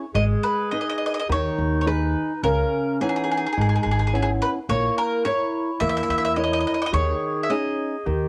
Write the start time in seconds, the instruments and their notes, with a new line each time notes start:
0.14 upright bass G#1, nylon-string guitar G#3, clarinet G#4, mandolin D#5
0.43 mandolin B4
0.71 nylon-string guitar D#4 G#4 B4, mandolin D#5
0.81 mandolin D#5
0.89 mandolin D#5
0.98 mandolin D#5
1.06 mandolin D#5
1.14 mandolin D#5
1.20 mandolin D#5
1.29 upright bass D#2, nylon-string guitar D#3, clarinet D#4, mandolin C#5
1.58 upright bass D#2
1.81 mandolin C#5
1.86 nylon-string guitar D#4 G#4 B4, mandolin B4
2.43 upright bass C#2, nylon-string guitar C#3, clarinet C#4, mandolin A#4
3.01 nylon-string guitar E3 B3 C#4, clarinet D#4, mandolin G#4
3.09 mandolin G#4
3.16 mandolin G#4
3.24 mandolin G#4
3.31 mandolin G#4
3.37 mandolin G#4
3.47 mandolin G#4
3.53 mandolin G#4
3.57 upright bass G#1, nylon-string guitar G#3
3.61 mandolin G#4
3.69 mandolin G#4
3.76 mandolin G#4
3.83 upright bass G#1, mandolin G#4
3.91 mandolin G#4
3.99 mandolin G#4
4.07 mandolin G#4
4.13 nylon-string guitar B3 C#4 E4, mandolin G#4
4.23 mandolin G#4
4.42 mandolin B4
4.69 upright bass A#1, nylon-string guitar A#3, clarinet E4, mandolin C#5
4.98 mandolin A#4
5.25 nylon-string guitar E4 A#4 C#5, mandolin C#5
5.80 upright bass E2, nylon-string guitar A#3, mandolin E5
5.89 mandolin E5
5.97 mandolin E5
6.03 mandolin E5
6.09 upright bass E2, mandolin E5
6.18 mandolin E5
6.25 mandolin E5
6.36 nylon-string guitar E4 A#4 C#5, mandolin D#5
6.44 mandolin D#5
6.53 mandolin D#5
6.60 mandolin D#5
6.67 mandolin D#5
6.74 mandolin D#5
6.82 mandolin D#5
6.86 mandolin D#5
6.92 upright bass D#2, nylon-string guitar D#3, clarinet G#4, mandolin C#5
7.43 mandolin E5
7.49 nylon-string guitar C#4 D#4 G#4, mandolin D#5
8.06 upright bass D#2, nylon-string guitar D#3, clarinet G4